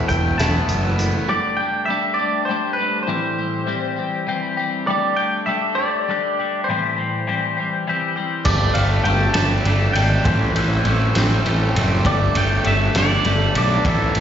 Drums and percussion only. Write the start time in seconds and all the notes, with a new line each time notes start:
0.09 kick, closed hi-hat
0.39 snare, closed hi-hat
0.69 closed hi-hat
0.99 closed hi-hat
8.45 kick, crash
8.75 ride
9.05 ride
9.34 snare, ride
9.65 ride
9.95 ride
10.25 kick, ride
10.56 ride
10.85 ride
11.15 snare, ride
11.46 ride
11.76 ride
12.05 kick, ride
12.35 ride
12.64 ride
12.95 snare, ride
13.25 ride
13.55 ride
13.85 kick, ride
14.15 ride